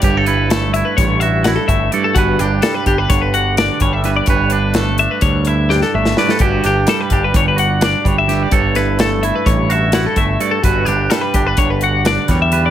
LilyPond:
<<
  \new Staff \with { instrumentName = "Clean electric guitar" } { \time 9/8 \key e \dorian \tempo 4. = 85 cis''8 b'8 a'8 e''16 b'16 cis''8 e''8 fis'16 a'16 e''8 d''16 a'16 | fis'8 g'8 a'16 b'16 g'16 b'16 cis''16 b'16 fis''8 d''8 cis''16 e''8 d''16 | cis''8 b'8 a'8 e''16 b'16 cis''8 e''8 g'16 a'16 e''8 d''16 a'16 | fis'8 g'8 a'16 b'16 g'16 b'16 cis''16 b'16 fis''8 d''8 cis''16 e''8 d''16 |
cis''8 b'8 a'8 e''16 b'16 cis''8 e''8 fis'16 a'16 e''8 d''16 a'16 | fis'8 g'8 a'16 b'16 g'16 b'16 cis''16 b'16 fis''8 d''8 cis''16 e''8 d''16 | }
  \new Staff \with { instrumentName = "Clean electric guitar" } { \time 9/8 \key e \dorian << { g'16 a'16 e'4 e'4 fis'8 e'4 a'8 | b'8 d'4 d'4 fis'8 d'4 b'8 | b'8 d'4 d'4 e'8 d'4 b'8 | g'8 d'4 d'4 fis'8 d'4 g'8 |
a'8 e'4 e'4 fis'8 e'4 a'8 | b'8 d'4 d'4 fis'8 d'4 b'8 | } \\ { g,4 a4 g,4. a8 g,8 | g,4 g4 d4. g8 g,8 | g,4 a4 g,4. a8 g,8 | g,4 g4 g,4. g8 g,8 |
g,4 a4 g,4. a8 g,8 | g,4 g4 d4. g8 g,8 | } >> }
  \new Staff \with { instrumentName = "Picked electric bass" } { \clef bass \time 9/8 \key e \dorian g,,2 a,,4. g,,8 r8 | g,,8 g,,8 r8 g,,8 g,,4. g,,4 | g,,2 d,4. g,,8 r8 | g,,8 g,,8 r8 g,,8 g,,4. g,,4 |
g,,2 a,,4. g,,8 r8 | g,,8 g,,8 r8 g,,8 g,,4. e,4 | }
  \new DrumStaff \with { instrumentName = "Drums" } \drummode { \time 9/8 <hh bd>8 hh8 <hh sn>8 hh8 <hh bd sn>8 hh8 <hh sn>8 <hh bd>8 hh8 | <hh bd>8 hh8 <hh sn>8 <hh bd>8 <hh bd sn>8 hh8 <hh sn>8 <hh bd>8 <hh sn>8 | <hh bd>8 hh8 <hh sn>8 hh8 <hh bd>8 hh8 sn16 sn8 sn16 sn16 sn16 | <hh bd>8 <hh sn>8 <hh sn>8 <hh bd>8 <hh bd>8 hh8 <hh sn>8 <hh bd>8 <hh sn>8 |
<hh bd>8 <hh sn>8 <hh sn>8 hh8 <hh bd>8 hh8 <hh sn>8 <hh bd>8 hh8 | <hh bd>8 hh8 <hh sn>8 <hh bd>8 <hh bd>8 hh8 <hh sn>8 <hh bd sn>8 hh8 | }
>>